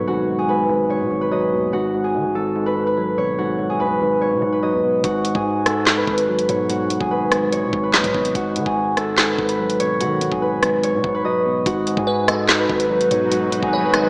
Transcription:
Already playing: tine electric piano G#2 B2 F#3, harp A4 B4 C#5
0.07 808-style bass G#1, tine electric piano G#2, harp F#4
0.28 tine electric piano G#2
0.39 harp G#4
0.49 tine electric piano G#2, harp B4
0.69 808-style bass G#1, tine electric piano G#2
0.90 tine electric piano G#2, harp C#5
1.01 808-style bass B2
1.11 808-style bass G#1, tine electric piano G#2
1.21 harp B4
1.31 tine electric piano F#3, harp D#5
1.52 808-style bass D#2, tine electric piano B2
1.73 808-style bass G#1, tine electric piano G#2, harp F#4
1.94 tine electric piano G#2
2.04 harp G#4
2.14 tine electric piano G#2, 808-style bass D#3
2.25 808-style bass G#1
2.35 808-style bass G#1, tine electric piano G#2, harp A4
2.56 tine electric piano G#2
2.66 harp B4
2.76 tine electric piano G#2
2.87 harp B4
2.97 tine electric piano F#3
3.18 808-style bass G#1, tine electric piano B2, harp C#5
3.38 808-style bass G#1, tine electric piano G#2, harp F#4
3.59 tine electric piano G#2
3.70 harp G#4
3.80 808-style bass G#2, tine electric piano G#2, harp B4
3.90 808-style bass G#1
4.01 808-style bass G#1, tine electric piano G#2
4.21 tine electric piano G#2, harp C#5
4.32 808-style bass B2
4.42 808-style bass G#2, tine electric piano G#2
4.52 harp B4
4.63 tine electric piano F#3, harp D#5
4.73 808-style bass D#2
4.83 tine electric piano B2
5.04 808-style bass G#1, tine electric piano G#2, harp F#4, kick, closed hi-hat
5.25 tine electric piano G#2, closed hi-hat
5.35 808-style bass G#2, harp G#4, kick
5.45 tine electric piano G#2
5.66 tine electric piano G#2, harp A4, cross-stick, closed hi-hat
5.87 tine electric piano G#2, snare, clap, closed hi-hat
5.97 harp B4
6.07 808-style bass G#1, tine electric piano G#2, kick
6.18 harp B4, closed hi-hat
6.28 tine electric piano F#3
6.39 closed hi-hat
6.49 808-style bass G#2, tine electric piano B2, harp C#5, closed hi-hat
6.69 tine electric piano G#2, harp F#4, closed hi-hat
6.90 tine electric piano G#2, closed hi-hat
7.01 808-style bass G#1, harp G#4, kick
7.11 tine electric piano G#2, harp B4
7.32 808-style bass G#1, tine electric piano G#2, cross-stick, closed hi-hat
7.52 tine electric piano G#2, harp C#5, closed hi-hat
7.63 808-style bass B2
7.73 808-style bass G#1, tine electric piano G#2, kick
7.83 harp B4
7.94 808-style bass D#2, tine electric piano F#3, harp D#5, snare, clap, closed hi-hat
8.04 808-style bass G#2, kick, closed hi-hat
8.14 808-style bass G#1, tine electric piano B2, kick
8.25 closed hi-hat
8.35 808-style bass G#1, tine electric piano G#2, harp F#4, kick, closed hi-hat
8.56 tine electric piano G#2, 808-style bass D#3, closed hi-hat
8.66 808-style bass G#1, harp G#4, kick
8.76 tine electric piano G#2
8.97 tine electric piano G#2, harp A4, cross-stick, closed hi-hat
9.18 tine electric piano G#2, snare, clap, closed hi-hat
9.28 harp B4
9.38 808-style bass G#1, tine electric piano G#2, kick
9.49 harp B4, closed hi-hat
9.59 tine electric piano F#3
9.70 closed hi-hat
9.80 808-style bass G#1, tine electric piano B2, harp C#5, closed hi-hat
10.01 tine electric piano G#2, 808-style bass D#3, harp F#4, closed hi-hat
10.21 tine electric piano G#2, closed hi-hat
10.32 808-style bass G#1, harp G#4, kick
10.42 tine electric piano G#2, harp B4
10.63 808-style bass G#1, tine electric piano G#2, cross-stick, closed hi-hat
10.83 tine electric piano G#2, harp C#5, closed hi-hat
10.94 808-style bass B2
11.04 808-style bass G#2, tine electric piano G#2, kick
11.14 harp B4
11.25 tine electric piano F#3, harp D#5
11.45 tine electric piano B2
11.66 808-style bass G#1, tine electric piano G#2, ambient pad F#3 D#4 F#4 B4, harp F#4, kick, closed hi-hat
11.87 tine electric piano G#2, closed hi-hat
11.97 808-style bass G#2, harp G#4, kick
12.07 tine electric piano G#2, synth pluck B4
12.28 tine electric piano G#2, harp A4, synth pluck D#5, cross-stick, closed hi-hat
12.49 tine electric piano G#2, snare, clap, closed hi-hat
12.59 harp B4
12.70 808-style bass G#1, tine electric piano G#2, kick
12.80 harp B4, closed hi-hat
12.90 tine electric piano F#3
13.01 closed hi-hat
13.11 808-style bass G#2, tine electric piano B2, harp C#5, closed hi-hat
13.31 tine electric piano G#2, harp F#4, closed hi-hat
13.52 tine electric piano G#2, closed hi-hat
13.63 808-style bass G#1, harp G#4, kick
13.73 tine electric piano G#2, harp B4, synth pluck C#5
13.94 808-style bass G#1, tine electric piano G#2, synth pluck D#5, cross-stick, closed hi-hat

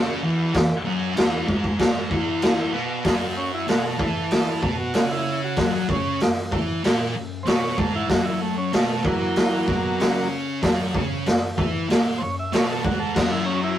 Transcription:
Already playing: distorted electric guitar C#3 C#4
0.22 distorted electric guitar E2 E3
0.53 muted distorted electric guitar stroke, kick, snare, crash
0.84 distorted electric guitar F#2 F#3
1.15 distorted electric guitar E2 E3, snare, crash
1.47 distorted electric guitar G#2 G#3, kick
1.64 kick
1.79 distorted electric guitar G#2 G#3, kick, snare, crash
2.10 distorted electric guitar E2 E3, kick
2.42 snare, crash
2.72 distorted electric guitar B2 B3
3.04 distorted electric guitar F#2 F#3, kick, snare, open hi-hat
3.37 transistor combo organ C#4
3.54 transistor combo organ E4
3.67 distorted electric guitar B2 B3, transistor combo organ F#4, snare, open hi-hat
3.82 transistor combo organ G#4
3.87 transistor combo organ A4
3.98 distorted electric guitar E3 E4, kick
4.31 snare, open hi-hat
4.62 distorted electric guitar B2 B3, kick
4.80 transistor combo organ F#4
4.94 distorted electric guitar C#3 C#4, snare, open hi-hat
5.11 transistor combo organ E4
5.44 transistor combo organ F#4
5.56 distorted electric guitar F#2 F#3, kick, snare, open hi-hat
5.88 distorted electric guitar C#3 C#4, transistor combo organ C#4, kick
6.20 distorted electric guitar F#2, snare, open hi-hat
6.51 distorted electric guitar E3 E4, kick
6.84 distorted electric guitar A#2 A#3, snare, open hi-hat
7.15 distorted electric guitar F#2
7.43 distorted electric guitar B2 B3, transistor combo organ C5 C#5, open hi-hat
7.48 snare
7.77 distorted electric guitar G#2 G#3, transistor combo organ A4, kick
7.95 transistor combo organ E4
8.09 distorted electric guitar F#2 F#3, transistor combo organ F#4, kick, snare, open hi-hat
8.26 transistor combo organ E4
8.42 transistor combo organ A3
8.58 transistor combo organ C#4
8.72 distorted electric guitar B2 B3, transistor combo organ A3, snare, open hi-hat
9.03 distorted electric guitar E3 E4, transistor combo organ F#3, kick
9.07 transistor combo organ A#3
9.36 snare, open hi-hat
9.68 distorted electric guitar B2 B3, kick
9.99 distorted electric guitar C#3 C#4, snare, open hi-hat
10.62 distorted electric guitar F#2 F#3, kick, snare, open hi-hat
10.95 distorted electric guitar C#3 C#4, kick
11.26 distorted electric guitar F#2, snare, open hi-hat
11.57 distorted electric guitar E3 E4, kick
11.89 distorted electric guitar A#2 A#3, snare, open hi-hat
12.18 distorted electric guitar F#2, transistor combo organ C5
12.22 transistor combo organ C#5
12.39 transistor combo organ E5
12.52 distorted electric guitar B2 B3, transistor combo organ C#5, snare, open hi-hat
12.71 transistor combo organ A4
12.83 distorted electric guitar G#2 G#3, transistor combo organ F#4, kick
13.00 transistor combo organ A4
13.15 distorted electric guitar F#2 F#3, transistor combo organ F#4, kick, snare, crash
13.31 transistor combo organ E4
13.46 transistor combo organ C#4
13.63 transistor combo organ E4

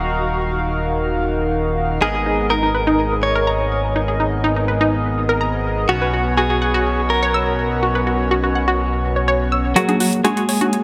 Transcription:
Already playing: analog synth bass D#1, analog polysynth D#3 D#4 F#4 A#4 F5, clean electric guitar F#4
2.02 analog synth bass G#1, analog polysynth G#2 B3 G#4 A#4 D#5, synth pluck D#4, clean electric guitar G#4
2.15 synth pluck G#4
2.26 synth pluck D#4
2.50 synth pluck D#4, clean electric guitar A#4
2.63 synth pluck D#4
2.75 synth pluck B4
2.87 synth pluck D#4
3.23 clean electric guitar C#5
3.35 synth pluck A#4
3.47 synth pluck A#5
3.96 synth pluck D#4
4.08 synth pluck G#4
4.20 synth pluck D#4
4.44 synth pluck D#4
4.56 synth pluck D#4
4.68 synth pluck B4
4.81 synth pluck D#4
5.29 synth pluck A#4
5.41 synth pluck A#5
5.89 analog synth bass B1, analog polysynth B2 B3 C#4 F#4 C#5, clean electric guitar F#4, synth pluck F#4
6.02 synth pluck B4
6.13 synth pluck F#4
6.37 synth pluck F#4, clean electric guitar G#4
6.50 synth pluck F#4
6.62 synth pluck F#5
6.74 synth pluck F#4
7.10 clean electric guitar A#4
7.23 synth pluck C#5
7.34 synth pluck E6
7.83 synth pluck F#4
7.95 synth pluck B4
8.07 synth pluck F#4
8.31 synth pluck F#4
8.44 synth pluck F#4
8.55 synth pluck F#5
8.68 synth pluck F#4
9.16 synth pluck C#5
9.28 synth pluck C#5
9.52 synth pluck E6
9.76 clean electric guitar F#3 F#4, analog polysynth A#3 F#4 G#4 C#5, synth pluck F#4, supersaw synth F#5, closed hi-hat
9.89 synth pluck G#4, closed hi-hat, high conga
10.00 synth pluck F#4, open hi-hat
10.13 closed hi-hat
10.24 clean electric guitar G#3 G#4, synth pluck F#4, supersaw synth G#5, closed hi-hat, high conga
10.37 synth pluck F#4, closed hi-hat
10.49 synth pluck C#5, open hi-hat
10.61 synth pluck F#4, closed hi-hat, high conga
10.73 closed hi-hat

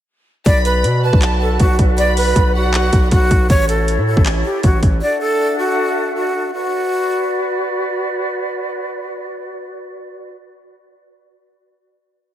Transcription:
0.46 808-style bass B1, flute section F#4 B4 D5, flute D5, violin section B5, kick, closed hi-hat
0.65 flute B4, closed hi-hat
0.84 808-style bass B2, closed hi-hat
1.03 flute B4, violin section A5
1.13 808-style bass B1, kick
1.22 clap, closed hi-hat
1.41 flute A4
1.60 808-style bass B1, flute F#4, kick, closed hi-hat
1.79 808-style bass B1, kick, closed hi-hat
1.98 flute D5, violin section B5, closed hi-hat
2.17 flute B4, open hi-hat
2.36 808-style bass B1, kick, closed hi-hat
2.55 flute F#4, violin section F#5
2.74 clap, closed hi-hat
2.93 808-style bass B1, kick, closed hi-hat
3.11 808-style bass B1, flute F#4, kick, closed hi-hat
3.31 808-style bass B1, kick, closed hi-hat
3.50 808-style bass A1, flute section E4 A4 C#5, flute C#5, kick, closed hi-hat
3.69 flute A4, closed hi-hat
3.88 closed hi-hat
3.98 808-style bass A2
4.07 flute A4
4.17 808-style bass A1, kick
4.26 clap, closed hi-hat
4.45 flute G4
4.63 808-style bass A1, flute F#4, kick, closed hi-hat
4.83 808-style bass A1, kick, closed hi-hat
5.02 flute section D4 A4 E5 F#5, flute D5
5.21 flute A4
5.59 flute F#4
6.16 flute F#4
6.54 flute section F#4 B4 D5, flute F#4

